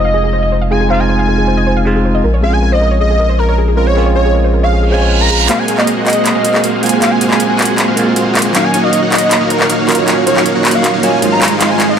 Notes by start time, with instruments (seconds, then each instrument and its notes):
Already playing: sub bass F1, tine electric piano G#3 C4 D#4 F4, digital synth lead D#5
0.05 synth arpeggio sound F5
0.14 synth arpeggio sound G#4
0.24 synth arpeggio sound G#4
0.33 synth arpeggio sound C5
0.43 synth arpeggio sound D#5
0.52 synth arpeggio sound C5
0.61 synth arpeggio sound F5
0.71 tine electric piano G#3 C4 D#4 F4, synth arpeggio sound G#4, digital synth lead G#5
0.81 synth arpeggio sound G#4
0.89 tine electric piano G#3 C4 D#4 F4, synth arpeggio sound C5, digital synth lead F5
1.00 synth arpeggio sound D#5, digital synth lead G#5
1.09 synth arpeggio sound C5
1.19 synth arpeggio sound F5, digital synth lead G#5
1.28 synth arpeggio sound G#4
1.38 synth arpeggio sound G#4
1.47 synth arpeggio sound C5
1.57 synth arpeggio sound D#5
1.67 synth arpeggio sound C5
1.77 synth arpeggio sound F5
1.85 tine electric piano G#3 C4 D#4 F4, synth arpeggio sound G#4
1.96 synth arpeggio sound G#4
2.05 synth arpeggio sound C5
2.15 synth arpeggio sound D#5
2.24 sub bass A#1, synth arpeggio sound A#4
2.34 synth arpeggio sound C#5
2.41 tine electric piano G#3 C4 C#4 F4, synth arpeggio sound G#4, digital synth lead F5
2.53 synth arpeggio sound G#4, digital synth lead G#5
2.62 synth arpeggio sound A#4, digital synth lead G#5
2.72 synth arpeggio sound C5, digital synth lead D#5
2.81 synth arpeggio sound A#4
2.91 synth arpeggio sound C#5
3.01 synth arpeggio sound G#4, digital synth lead D#5
3.10 synth arpeggio sound G#4
3.20 synth arpeggio sound A#4
3.29 synth arpeggio sound C5
3.39 digital synth lead A#4, synth arpeggio sound A#4
3.49 digital synth lead A#4, synth arpeggio sound C#5
3.58 synth arpeggio sound G#4
3.68 synth arpeggio sound G#4
3.76 tine electric piano G#3 C4 C#4 F4, digital synth lead A#4, synth arpeggio sound A#4
3.87 synth arpeggio sound C5, digital synth lead C#5
3.94 tine electric piano G#3 C4 C#4, synth arpeggio sound A#4
3.98 tine electric piano F4
4.06 synth arpeggio sound C#5
4.15 synth arpeggio sound G#4, digital synth lead C#5
4.25 synth arpeggio sound G#4
4.35 synth arpeggio sound A#4
4.44 synth arpeggio sound C5
4.54 synth arpeggio sound A#4
4.63 synth arpeggio sound C#5, digital synth lead F5
4.73 synth arpeggio sound G#4, reverse cymbal
4.83 synth arpeggio sound G#4
4.90 tine electric piano G#3 C4 C#4 F4, synth arpeggio sound G#4, digital synth lead G#5
5.02 synth arpeggio sound C#5
5.11 synth arpeggio sound F5
5.21 synth arpeggio sound A#4, digital synth lead A#5
5.30 synth arpeggio sound G#4
5.40 synth arpeggio sound F5
5.47 tine electric piano G#3 A#3 C4, supersaw synth A#3 F#4 G#4 C5 F5, digital synth lead F5, clap, closed hi-hat, riser
5.59 digital synth lead G#5
5.68 supersaw synth A#3 F#4 G#4 C5 F5, digital synth lead G#5, closed hi-hat
5.78 digital synth lead D#5, clap
5.87 closed hi-hat
5.97 supersaw synth A#3 F#4 G#4 C5 F#5
6.06 digital synth lead D#5, clap, closed hi-hat
6.10 closed hi-hat
6.13 closed hi-hat
6.26 clap, closed hi-hat
6.35 supersaw synth A#3 F#4 G#4 C5 F5
6.45 closed hi-hat
6.54 clap
6.63 supersaw synth A#3 F#4 G#4 C5 F5, closed hi-hat
6.82 tine electric piano G#3 A#3 C4 F4, digital synth lead G#5, closed hi-hat
6.86 closed hi-hat
6.89 supersaw synth A#3 F#4 G#4 C5 F5, closed hi-hat
7.00 tine electric piano G#3 A#3 C4, supersaw synth A#3 F#4 G#4 C5 F5, digital synth lead F5, clap, closed hi-hat
7.11 digital synth lead G#5
7.21 supersaw synth A#3 F#4 G#4 C5 F5, closed hi-hat
7.30 digital synth lead G#5, clap
7.40 closed hi-hat
7.50 supersaw synth A#3 F#4 G#4 C5 F#5
7.59 clap, closed hi-hat
7.62 closed hi-hat
7.65 closed hi-hat
7.78 clap, closed hi-hat
7.88 supersaw synth A#3 F#4 G#4 C5 F5
7.95 tine electric piano G#3 A#3 C4, closed hi-hat
7.99 tine electric piano F4
8.16 supersaw synth A#3 F#4 G#4 C5 F5, closed hi-hat
8.35 clap, closed hi-hat
8.39 closed hi-hat
8.42 supersaw synth A#3 F#4 G#4 C5 F5, closed hi-hat
8.53 tine electric piano F#3 A#3 C#4, supersaw synth A#3 D#4 F#4 C#5 F5, digital synth lead F5, clap, closed hi-hat
8.64 digital synth lead G#5
8.74 supersaw synth A#3 D#4 F#4 C#5 F5, digital synth lead G#5, closed hi-hat
8.83 digital synth lead D#5
8.93 closed hi-hat
9.02 supersaw synth A#3 D#4 F#4 C#5 F#5
9.12 digital synth lead D#5, clap, closed hi-hat
9.15 closed hi-hat
9.18 closed hi-hat
9.31 clap, closed hi-hat
9.41 supersaw synth A#3 D#4 F#4 C#5 F5
9.50 digital synth lead A#4, closed hi-hat
9.60 digital synth lead A#4, clap
9.69 supersaw synth A#3 D#4 F#4 C#5 F5, closed hi-hat
9.87 tine electric piano F#3 A#3 C#4 F4, digital synth lead A#4, clap, closed hi-hat
9.92 closed hi-hat
9.95 supersaw synth A#3 D#4 F#4 C#5 F5, digital synth lead C#5, closed hi-hat
10.06 tine electric piano F#3 A#3 C#4, supersaw synth A#3 D#4 F#4 C#5 F5, clap, closed hi-hat
10.26 supersaw synth A#3 D#4 F#4 C#5 F5, digital synth lead C#5, closed hi-hat
10.36 clap
10.46 closed hi-hat
10.55 supersaw synth A#3 D#4 F#4 C#5 F#5
10.65 clap, closed hi-hat
10.68 closed hi-hat
10.71 digital synth lead F5, closed hi-hat
10.84 clap, closed hi-hat
10.94 supersaw synth A#3 D#4 F#4 C#5 F5
11.02 tine electric piano F#3 A#3 C#4 F4, digital synth lead G#5, closed hi-hat
11.22 supersaw synth G#3 D#4 F4 C5 F5, closed hi-hat
11.32 digital synth lead A#5
11.42 clap, closed hi-hat
11.45 closed hi-hat
11.48 supersaw synth G#3 D#4 F4 C5 F5, closed hi-hat
11.59 tine electric piano G#3 C4 D#4 F4, supersaw synth G#3 D#4 F4 C5 F5, digital synth lead F5, clap, closed hi-hat
11.70 digital synth lead G#5
11.79 supersaw synth G#3 D#4 F4 C5 F5, digital synth lead G#5, clap, closed hi-hat
11.89 digital synth lead D#5